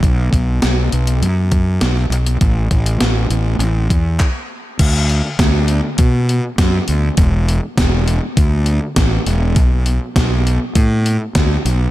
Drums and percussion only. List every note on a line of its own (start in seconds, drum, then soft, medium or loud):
0.03 kick medium
0.03 closed hi-hat medium
0.33 kick medium
0.33 closed hi-hat medium
0.62 snare loud
0.62 closed hi-hat medium
0.92 closed hi-hat medium
1.07 closed hi-hat medium
1.23 closed hi-hat medium
1.52 kick medium
1.52 closed hi-hat medium
1.81 snare medium
1.81 closed hi-hat medium
1.97 snare soft
2.12 closed hi-hat medium
2.26 closed hi-hat medium
2.41 kick medium
2.41 closed hi-hat medium
2.71 kick medium
2.71 closed hi-hat medium
2.86 closed hi-hat medium
3.00 snare loud
3.00 closed hi-hat medium
3.31 closed hi-hat medium
3.60 closed hi-hat medium
3.90 kick medium
3.90 closed hi-hat medium
4.20 kick loud
4.20 clap medium
4.79 kick loud
4.79 open hi-hat medium
4.79 crash loud
5.09 open hi-hat medium
5.39 kick loud
5.39 snare loud
5.39 open hi-hat medium
5.68 open hi-hat medium
5.98 kick loud
5.98 open hi-hat medium
6.29 open hi-hat medium
6.58 kick loud
6.58 snare loud
6.58 open hi-hat medium
6.88 open hi-hat medium
7.17 kick loud
7.17 open hi-hat medium
7.49 open hi-hat medium
7.78 kick loud
7.78 snare loud
7.78 open hi-hat medium
8.08 open hi-hat medium
8.37 kick loud
8.37 open hi-hat medium
8.66 open hi-hat medium
8.96 kick loud
8.96 snare loud
8.96 open hi-hat medium
9.26 snare soft
9.26 open hi-hat medium
9.56 kick loud
9.56 open hi-hat medium
9.86 open hi-hat medium
10.16 kick loud
10.16 snare loud
10.16 open hi-hat medium
10.47 open hi-hat medium
10.75 kick loud
10.75 open hi-hat medium
11.06 open hi-hat medium
11.35 kick loud
11.35 snare loud
11.35 open hi-hat medium
11.66 snare soft
11.66 open hi-hat medium